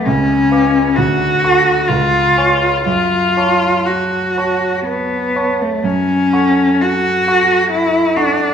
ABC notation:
X:1
M:3/4
L:1/16
Q:1/4=63
K:F#m
V:1 name="Grand piano"
C,,2 [B^ed']2 D,,2 [Afc']2 C,,2 [cgc']2 | F,,2 [cac']4 [cac']4 [cac']2 | F,,2 [Afc']4 [Afc']4 [Afc']2 |]
V:2 name="Cello"
C4 F4 ^E4 | ^E4 F4 B,3 A, | C4 F4 E2 D2 |]